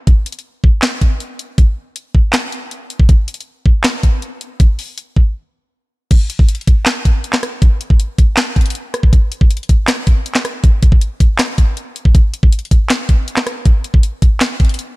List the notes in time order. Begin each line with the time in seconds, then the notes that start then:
0.07 kick, closed hi-hat
0.26 closed hi-hat
0.32 closed hi-hat
0.39 closed hi-hat
0.64 kick
0.82 snare, clap, closed hi-hat
1.01 kick, closed hi-hat
1.20 closed hi-hat
1.39 closed hi-hat
1.58 kick, closed hi-hat
1.96 closed hi-hat
2.15 kick
2.33 snare, clap, closed hi-hat
2.52 closed hi-hat
2.71 closed hi-hat
2.90 closed hi-hat
3.00 kick
3.09 kick, closed hi-hat
3.28 closed hi-hat
3.34 closed hi-hat
3.40 closed hi-hat
3.66 kick
3.84 snare, clap, closed hi-hat
4.03 kick, closed hi-hat
4.22 closed hi-hat
4.41 closed hi-hat
4.60 kick, closed hi-hat
4.79 open hi-hat
4.98 closed hi-hat
5.16 kick
6.11 kick, closed hi-hat, crash
6.30 closed hi-hat
6.39 kick
6.49 closed hi-hat
6.55 closed hi-hat
6.61 closed hi-hat
6.67 kick, closed hi-hat
6.86 snare, clap, closed hi-hat
7.05 kick, closed hi-hat
7.24 closed hi-hat
7.33 snare, clap
7.43 cross-stick, closed hi-hat
7.62 kick, closed hi-hat
7.81 closed hi-hat
7.90 kick
8.00 closed hi-hat
8.18 kick, closed hi-hat
8.37 snare, clap, closed hi-hat
8.56 kick, closed hi-hat
8.61 closed hi-hat
8.66 closed hi-hat
8.70 closed hi-hat
8.75 closed hi-hat
8.94 cross-stick, closed hi-hat
9.03 kick
9.13 kick, closed hi-hat
9.32 closed hi-hat
9.41 kick
9.51 closed hi-hat
9.57 closed hi-hat
9.63 closed hi-hat
9.69 kick, closed hi-hat
9.88 snare, clap, closed hi-hat
10.07 kick, closed hi-hat
10.26 closed hi-hat
10.35 snare, clap
10.45 cross-stick, closed hi-hat
10.64 kick, closed hi-hat
10.82 kick, closed hi-hat
10.92 kick
11.01 closed hi-hat
11.20 kick, closed hi-hat
11.39 snare, clap, closed hi-hat
11.58 kick, closed hi-hat
11.77 closed hi-hat
11.96 closed hi-hat
12.05 kick
12.15 kick, closed hi-hat
12.34 closed hi-hat
12.43 kick
12.52 closed hi-hat
12.59 closed hi-hat
12.65 closed hi-hat
12.71 kick, closed hi-hat
12.90 snare, clap, closed hi-hat
13.09 kick, closed hi-hat
13.28 closed hi-hat
13.37 snare, clap
13.47 cross-stick, closed hi-hat
13.65 kick, closed hi-hat
13.84 closed hi-hat
13.94 kick
14.03 closed hi-hat
14.22 kick, closed hi-hat
14.40 snare, clap, closed hi-hat
14.60 kick, closed hi-hat
14.65 closed hi-hat
14.69 closed hi-hat
14.74 closed hi-hat
14.79 closed hi-hat